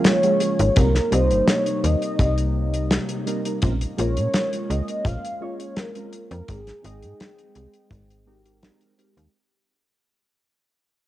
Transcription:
Already playing: C#3 F3 G#3 A#3 C#4 F4 A#4
0.05 C#5, snare, closed hi-hat
0.23 F3 G#3 A#3 C#4 G#4, closed hi-hat
0.40 closed hi-hat
0.59 G#1, closed hi-hat
0.75 C2 C3 G3 A#3 C4 D#4 A#4, kick, closed hi-hat
0.95 snare, closed hi-hat
1.10 C2 C3 G3 A#3 D#4 C5 D#5, closed hi-hat
1.31 G1, closed hi-hat
1.47 C#5, snare, closed hi-hat
1.66 closed hi-hat
1.84 D#2 D#5, closed hi-hat
2.02 closed hi-hat
2.19 C2, kick, closed hi-hat
2.38 closed hi-hat
2.74 closed hi-hat
2.91 snare, closed hi-hat
3.09 closed hi-hat
3.25 G3 A#3 C4 D#4 A#4, closed hi-hat
3.44 G3 A#3 C4 D#4 A#4, closed hi-hat
3.62 A#1 G#3 C4 C#4 F4 A#4, kick, closed hi-hat
3.81 closed hi-hat
3.97 A#1 G#3 A#3 C#4 F4 A#4 C#5, closed hi-hat
4.17 A#2, closed hi-hat
4.34 snare, closed hi-hat
4.53 closed hi-hat
4.70 C#2 D#5, closed hi-hat
4.88 closed hi-hat
5.05 A#1 F5, kick, closed hi-hat
5.25 closed hi-hat
5.40 G#3 A#3 C#4 F4 C#5
5.60 closed hi-hat
5.76 A#4, snare, closed hi-hat
5.95 G#3 C4 C#4 F4 A#4, closed hi-hat
6.13 closed hi-hat
6.31 F2 A#4, closed hi-hat
6.48 G#1 G#3 C4 D#4 G4 G#4 A#4 G5, kick, closed hi-hat
6.67 snare, closed hi-hat
6.82 G#1 G#3 C4 D#4 D#5 G5, closed hi-hat
7.02 G#2, closed hi-hat
7.20 snare, closed hi-hat
7.39 closed hi-hat
7.55 C2, closed hi-hat
7.74 closed hi-hat
7.91 G#1, kick, closed hi-hat
8.11 closed hi-hat
8.26 G#3 C4 D#4 G4 A#4
8.44 G#3 C4 D#4 G4 A#4, closed hi-hat
8.62 G#3 C4 D#4 G4 A#4, snare, closed hi-hat
8.81 closed hi-hat
8.97 G#3 C4 D#4 G4 A#4, closed hi-hat
9.17 D#2, closed hi-hat

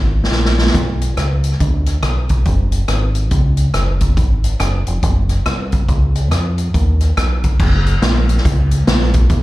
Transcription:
Already playing: G#1
0.24 snare
0.31 A#1, snare
0.45 snare
0.58 snare
0.67 snare
0.74 B1, kick, closed hi-hat
1.01 closed hi-hat
1.17 C#2, cross-stick, closed hi-hat
1.44 closed hi-hat
1.52 cross-stick
1.60 D2, kick, closed hi-hat
1.86 cross-stick, closed hi-hat
2.03 B1, cross-stick, closed hi-hat
2.29 kick, closed hi-hat
2.45 F#1, kick, closed hi-hat
2.72 closed hi-hat
2.88 G#1, cross-stick, closed hi-hat
3.15 closed hi-hat
3.31 C#2, kick, closed hi-hat
3.57 closed hi-hat
3.74 F#1, cross-stick, closed hi-hat
4.01 kick, closed hi-hat
4.17 G#1, kick, closed hi-hat
4.44 closed hi-hat
4.60 F#1, cross-stick, closed hi-hat
4.87 F1, closed hi-hat
5.03 F#1, kick, closed hi-hat
5.29 cross-stick, closed hi-hat
5.46 C2, cross-stick, closed hi-hat
5.72 kick, closed hi-hat
5.88 C#2, kick, closed hi-hat
6.15 closed hi-hat
6.31 F2, cross-stick, closed hi-hat
6.58 closed hi-hat
6.74 D#2, kick, closed hi-hat
7.01 cross-stick, closed hi-hat
7.17 B1, cross-stick, closed hi-hat
7.44 kick, closed hi-hat
7.60 F#1, kick, crash
7.87 closed hi-hat
8.02 A#1, snare, closed hi-hat
8.29 closed hi-hat
8.37 snare
8.45 C#2, kick, closed hi-hat
8.71 closed hi-hat
8.87 A#1, snare, closed hi-hat
9.14 kick, closed hi-hat
9.30 B1, kick, closed hi-hat

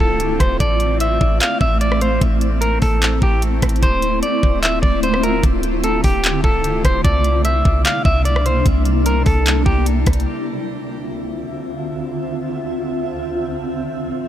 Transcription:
Already playing: D3 A3 C4 E4 F4
0.00 C1 A4
0.20 closed hi-hat
0.40 D1 C5, kick, cross-stick, closed hi-hat
0.60 A1 E4 D5, kick, closed hi-hat
0.80 closed hi-hat
1.00 E5, closed hi-hat
1.21 A1, kick
1.41 F5, clap, closed hi-hat
1.61 A1 E5, kick
1.81 D5, closed hi-hat
1.92 cross-stick
2.01 C5, closed hi-hat
2.21 A1, kick, closed hi-hat
2.41 closed hi-hat
2.61 A#4, closed hi-hat
2.82 A1 A4, kick, open hi-hat
3.02 clap, closed hi-hat
3.22 A1 G4, kick
3.42 closed hi-hat
3.62 A1, kick, cross-stick, closed hi-hat
3.69 closed hi-hat
3.76 closed hi-hat
3.83 D1 D3 F4 C5, kick, closed hi-hat
4.02 closed hi-hat
4.23 D5, closed hi-hat
4.43 D1, kick
4.63 E5, clap, closed hi-hat
4.82 D1 D5, kick
5.03 C5, closed hi-hat
5.14 cross-stick
5.23 A#4, closed hi-hat
5.43 D1, kick, closed hi-hat
5.63 closed hi-hat
5.84 A4, closed hi-hat
6.04 D1 G4, kick, open hi-hat
6.24 clap, closed hi-hat
6.44 C1 A4, kick
6.64 closed hi-hat
6.85 D1 C5, kick, cross-stick, closed hi-hat
7.04 C2 C3 G3 A#3 D4 D5, kick, closed hi-hat
7.24 closed hi-hat
7.45 E5, closed hi-hat
7.65 C2, kick
7.85 F5, clap, closed hi-hat
8.05 C2 E5, kick
8.25 D5, closed hi-hat
8.36 cross-stick
8.46 C5, closed hi-hat
8.66 C2, kick, closed hi-hat
8.85 closed hi-hat
9.06 A#4, closed hi-hat
9.26 C2 A4, kick, open hi-hat
9.46 clap, closed hi-hat
9.66 C2 G4, kick
9.86 closed hi-hat
10.06 C2, kick, cross-stick, closed hi-hat
10.13 closed hi-hat
10.20 closed hi-hat
10.26 D2 D3 C4 F4 E5
13.49 A2 E3 A4

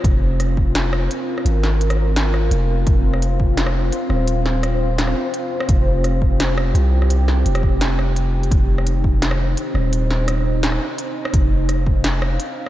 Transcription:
Already playing: C4 F4
0.04 F1 A#4, kick, closed hi-hat
0.40 cross-stick, closed hi-hat
0.57 kick
0.75 snare, closed hi-hat
0.93 cross-stick
1.11 closed hi-hat
1.38 cross-stick
1.45 G#1, closed hi-hat
1.63 snare
1.81 closed hi-hat
1.90 cross-stick, closed hi-hat
2.16 snare, closed hi-hat
2.34 cross-stick
2.51 F1, closed hi-hat
2.86 F1 C5, kick, closed hi-hat
3.14 cross-stick
3.22 closed hi-hat
3.40 kick
3.57 snare, closed hi-hat
3.66 cross-stick
3.92 closed hi-hat
4.10 D#1, cross-stick
4.28 closed hi-hat
4.46 snare
4.63 cross-stick, closed hi-hat
4.98 snare, closed hi-hat
5.07 cross-stick
5.34 closed hi-hat
5.60 cross-stick
5.68 F1 G4, kick, closed hi-hat
6.04 cross-stick, closed hi-hat
6.22 kick
6.40 snare, closed hi-hat
6.58 cross-stick
6.74 C2, closed hi-hat
7.02 cross-stick
7.10 D#4, closed hi-hat
7.28 snare
7.46 F1, closed hi-hat
7.55 cross-stick, closed hi-hat
7.63 kick
7.81 snare, closed hi-hat
7.99 cross-stick
8.16 closed hi-hat
8.43 closed hi-hat
8.51 F1 C5, kick, closed hi-hat
8.78 cross-stick
8.87 closed hi-hat
9.04 kick
9.22 snare, closed hi-hat
9.31 cross-stick
9.57 closed hi-hat
9.74 D#1, cross-stick
9.93 closed hi-hat
10.11 snare
10.28 cross-stick, closed hi-hat
10.63 snare, closed hi-hat
10.72 cross-stick
10.98 closed hi-hat
11.25 cross-stick
11.33 F1 F5, kick, closed hi-hat
11.69 cross-stick, closed hi-hat
11.86 kick
12.04 snare, closed hi-hat
12.22 cross-stick
12.40 closed hi-hat

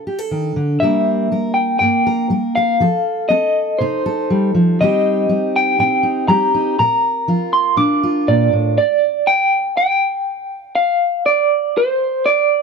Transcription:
Already playing: C3 F5
0.07 G4
0.19 A4
0.31 D#3
0.56 D3
0.80 C3 G3 A#3 E5
0.84 A#4
1.32 G3 A#4
1.54 G5
1.79 G2 A#3 G5
2.07 A#4
2.30 G3 A#4
2.55 A#4 F5
2.80 F3 A4
3.29 C4 A4 D#5
3.79 C3 D#4 C5
4.06 A4
4.30 G3
4.55 F3
4.81 D#3 G3 C4 D#4 G4 D#5
5.29 G3 D#4
5.56 G5
5.79 A#2 C4 G5
6.03 D#4
6.28 G3 G4 A#5
6.54 D#4
6.79 A#2 A#4 A#5
7.28 F3 F4
7.53 C6
7.76 A#2 D4 D6
8.03 F4
8.28 A#2 D5
8.53 A2
8.78 D5
9.27 G5
9.77 G5
10.75 F5
11.26 D5
11.77 C5
12.26 D5

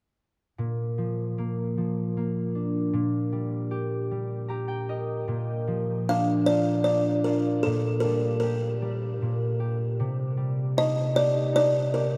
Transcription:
0.58 A#2
0.98 F3
1.38 A#3
1.77 F3
2.17 A#3
2.55 D4
2.93 A#2
3.32 G3
3.71 G4
4.11 G3
4.48 G4 A#5
4.68 G5
4.89 A#4 D#5
5.28 A#2
5.67 F3
6.09 D4 F5
6.46 F4 D5
6.84 D4 D5
7.24 F4 A#4
7.63 A#2 A4
8.00 G3 A#4
8.40 G4 A#4
8.82 G3
9.22 A#2
9.60 G4
10.00 C3
10.37 G3
10.77 D#4 D#5
11.15 G4 D5
11.53 D#4 D5
11.93 G4 A#4

